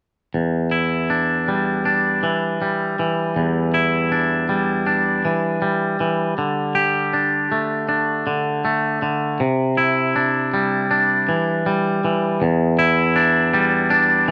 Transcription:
0, 0, Header, 1, 2, 480
1, 0, Start_track
1, 0, Key_signature, 1, "minor"
1, 0, Tempo, 753769
1, 222, Time_signature, 4, 2, 24, 8
1, 9113, End_track
2, 0, Start_track
2, 0, Title_t, "Clean electric guitar"
2, 0, Program_c, 0, 27
2, 219, Note_on_c, 0, 40, 39
2, 455, Note_on_c, 0, 64, 40
2, 700, Note_on_c, 0, 62, 37
2, 945, Note_on_c, 0, 55, 39
2, 1178, Note_off_c, 0, 62, 0
2, 1181, Note_on_c, 0, 62, 36
2, 1421, Note_on_c, 0, 52, 37
2, 1422, Note_off_c, 0, 40, 0
2, 1661, Note_off_c, 0, 64, 0
2, 1663, Note_off_c, 0, 55, 0
2, 1666, Note_on_c, 0, 55, 40
2, 1899, Note_off_c, 0, 52, 0
2, 1907, Note_on_c, 0, 52, 35
2, 2142, Note_on_c, 0, 40, 44
2, 2382, Note_on_c, 0, 64, 44
2, 2401, Note_off_c, 0, 62, 0
2, 2622, Note_on_c, 0, 62, 35
2, 2857, Note_off_c, 0, 55, 0
2, 2860, Note_on_c, 0, 55, 42
2, 3096, Note_off_c, 0, 62, 0
2, 3098, Note_on_c, 0, 62, 38
2, 3107, Note_off_c, 0, 52, 0
2, 3343, Note_on_c, 0, 52, 41
2, 3345, Note_off_c, 0, 40, 0
2, 3576, Note_off_c, 0, 55, 0
2, 3578, Note_on_c, 0, 55, 43
2, 3585, Note_off_c, 0, 64, 0
2, 3816, Note_off_c, 0, 52, 0
2, 3823, Note_on_c, 0, 52, 38
2, 4061, Note_off_c, 0, 52, 0
2, 4063, Note_on_c, 0, 50, 46
2, 4299, Note_on_c, 0, 67, 49
2, 4541, Note_off_c, 0, 62, 0
2, 4543, Note_on_c, 0, 62, 39
2, 4784, Note_off_c, 0, 55, 0
2, 4786, Note_on_c, 0, 57, 46
2, 5019, Note_off_c, 0, 62, 0
2, 5022, Note_on_c, 0, 62, 40
2, 5257, Note_off_c, 0, 50, 0
2, 5265, Note_on_c, 0, 50, 40
2, 5498, Note_off_c, 0, 57, 0
2, 5506, Note_on_c, 0, 57, 45
2, 5525, Note_off_c, 0, 67, 0
2, 5738, Note_off_c, 0, 50, 0
2, 5746, Note_on_c, 0, 50, 39
2, 5987, Note_off_c, 0, 50, 0
2, 5987, Note_off_c, 0, 57, 0
2, 5987, Note_on_c, 0, 48, 49
2, 6006, Note_off_c, 0, 62, 0
2, 6224, Note_on_c, 0, 64, 48
2, 6468, Note_on_c, 0, 62, 43
2, 6709, Note_on_c, 0, 55, 46
2, 6938, Note_off_c, 0, 62, 0
2, 6946, Note_on_c, 0, 62, 44
2, 7186, Note_off_c, 0, 48, 0
2, 7187, Note_on_c, 0, 52, 39
2, 7420, Note_off_c, 0, 55, 0
2, 7425, Note_off_c, 0, 64, 0
2, 7427, Note_on_c, 0, 55, 45
2, 7663, Note_off_c, 0, 52, 0
2, 7671, Note_on_c, 0, 52, 41
2, 7905, Note_off_c, 0, 62, 0
2, 7906, Note_off_c, 0, 55, 0
2, 7907, Note_on_c, 0, 40, 66
2, 7908, Note_off_c, 0, 52, 0
2, 8142, Note_on_c, 0, 64, 63
2, 8379, Note_on_c, 0, 62, 53
2, 8619, Note_on_c, 0, 55, 59
2, 8851, Note_off_c, 0, 62, 0
2, 8854, Note_on_c, 0, 62, 53
2, 9101, Note_off_c, 0, 40, 0
2, 9113, Note_off_c, 0, 55, 0
2, 9113, Note_off_c, 0, 62, 0
2, 9113, Note_off_c, 0, 64, 0
2, 9113, End_track
0, 0, End_of_file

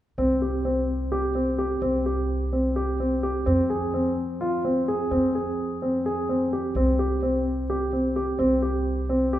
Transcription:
0, 0, Header, 1, 3, 480
1, 0, Start_track
1, 0, Tempo, 469484
1, 190, Time_signature, 7, 3, 24, 8
1, 9603, End_track
2, 0, Start_track
2, 0, Title_t, "Grand piano"
2, 0, Program_c, 0, 0
2, 186, Note_on_c, 0, 60, 65
2, 400, Note_off_c, 0, 60, 0
2, 427, Note_on_c, 0, 67, 52
2, 641, Note_off_c, 0, 67, 0
2, 664, Note_on_c, 0, 60, 57
2, 1091, Note_off_c, 0, 60, 0
2, 1143, Note_on_c, 0, 67, 60
2, 1358, Note_off_c, 0, 67, 0
2, 1381, Note_on_c, 0, 60, 52
2, 1597, Note_off_c, 0, 60, 0
2, 1621, Note_on_c, 0, 67, 55
2, 1837, Note_off_c, 0, 67, 0
2, 1860, Note_on_c, 0, 60, 62
2, 2076, Note_off_c, 0, 60, 0
2, 2106, Note_on_c, 0, 67, 54
2, 2532, Note_off_c, 0, 67, 0
2, 2583, Note_on_c, 0, 60, 52
2, 2798, Note_off_c, 0, 60, 0
2, 2822, Note_on_c, 0, 67, 60
2, 3038, Note_off_c, 0, 67, 0
2, 3067, Note_on_c, 0, 60, 52
2, 3280, Note_off_c, 0, 60, 0
2, 3305, Note_on_c, 0, 67, 58
2, 3519, Note_off_c, 0, 67, 0
2, 3539, Note_on_c, 0, 60, 64
2, 3756, Note_off_c, 0, 60, 0
2, 3782, Note_on_c, 0, 68, 57
2, 3997, Note_off_c, 0, 68, 0
2, 4026, Note_on_c, 0, 60, 56
2, 4451, Note_off_c, 0, 60, 0
2, 4507, Note_on_c, 0, 65, 64
2, 4720, Note_off_c, 0, 65, 0
2, 4751, Note_on_c, 0, 60, 57
2, 4962, Note_off_c, 0, 60, 0
2, 4992, Note_on_c, 0, 68, 60
2, 5203, Note_off_c, 0, 68, 0
2, 5226, Note_on_c, 0, 60, 63
2, 5440, Note_off_c, 0, 60, 0
2, 5471, Note_on_c, 0, 68, 54
2, 5894, Note_off_c, 0, 68, 0
2, 5952, Note_on_c, 0, 60, 53
2, 6163, Note_off_c, 0, 60, 0
2, 6194, Note_on_c, 0, 68, 62
2, 6404, Note_off_c, 0, 68, 0
2, 6434, Note_on_c, 0, 60, 55
2, 6644, Note_off_c, 0, 60, 0
2, 6676, Note_on_c, 0, 67, 55
2, 6885, Note_off_c, 0, 67, 0
2, 6913, Note_on_c, 0, 60, 62
2, 7124, Note_off_c, 0, 60, 0
2, 7147, Note_on_c, 0, 67, 51
2, 7360, Note_off_c, 0, 67, 0
2, 7388, Note_on_c, 0, 60, 58
2, 7813, Note_off_c, 0, 60, 0
2, 7869, Note_on_c, 0, 67, 58
2, 8081, Note_off_c, 0, 67, 0
2, 8106, Note_on_c, 0, 60, 52
2, 8320, Note_off_c, 0, 60, 0
2, 8344, Note_on_c, 0, 67, 57
2, 8559, Note_off_c, 0, 67, 0
2, 8575, Note_on_c, 0, 60, 69
2, 8794, Note_off_c, 0, 60, 0
2, 8818, Note_on_c, 0, 67, 53
2, 9247, Note_off_c, 0, 67, 0
2, 9298, Note_on_c, 0, 60, 60
2, 9516, Note_off_c, 0, 60, 0
2, 9540, Note_on_c, 0, 67, 66
2, 9603, Note_off_c, 0, 67, 0
2, 9603, End_track
3, 0, Start_track
3, 0, Title_t, "Upright bass"
3, 0, Program_c, 1, 32
3, 182, Note_on_c, 1, 36, 57
3, 1832, Note_off_c, 1, 36, 0
3, 1857, Note_on_c, 1, 36, 59
3, 3509, Note_off_c, 1, 36, 0
3, 3544, Note_on_c, 1, 41, 60
3, 5193, Note_off_c, 1, 41, 0
3, 5228, Note_on_c, 1, 41, 58
3, 6875, Note_off_c, 1, 41, 0
3, 6899, Note_on_c, 1, 36, 59
3, 8551, Note_off_c, 1, 36, 0
3, 8584, Note_on_c, 1, 36, 60
3, 9603, Note_off_c, 1, 36, 0
3, 9603, End_track
0, 0, End_of_file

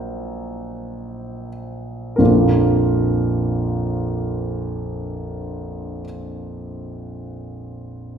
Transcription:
0, 0, Header, 1, 2, 480
1, 0, Start_track
1, 0, Key_signature, -2, "major"
1, 0, Tempo, 500000
1, 7854, End_track
2, 0, Start_track
2, 0, Title_t, "Grand piano"
2, 0, Program_c, 0, 0
2, 0, Control_c, 0, 64, 127
2, 0, Note_on_c, 0, 34, 42
2, 0, Note_on_c, 0, 54, 37
2, 0, Note_on_c, 0, 58, 34
2, 0, Note_on_c, 0, 63, 37
2, 0, Note_on_c, 0, 70, 56
2, 1413, Note_off_c, 0, 70, 0
2, 2072, Note_off_c, 0, 34, 0
2, 2073, Note_off_c, 0, 63, 0
2, 2074, Note_off_c, 0, 54, 0
2, 2074, Note_on_c, 0, 70, 40
2, 2075, Note_off_c, 0, 58, 0
2, 2093, Note_on_c, 0, 41, 31
2, 2096, Note_on_c, 0, 34, 35
2, 2102, Note_on_c, 0, 58, 31
2, 2102, Note_on_c, 0, 62, 29
2, 2106, Note_on_c, 0, 53, 29
2, 2109, Note_on_c, 0, 65, 30
2, 2125, Control_c, 0, 64, 0
2, 2363, Control_c, 0, 64, 127
2, 5770, Note_off_c, 0, 70, 0
2, 5789, Note_off_c, 0, 41, 0
2, 5792, Note_off_c, 0, 34, 0
2, 5798, Note_off_c, 0, 62, 0
2, 5799, Note_off_c, 0, 58, 0
2, 5802, Note_off_c, 0, 53, 0
2, 5806, Note_off_c, 0, 65, 0
2, 7854, End_track
0, 0, End_of_file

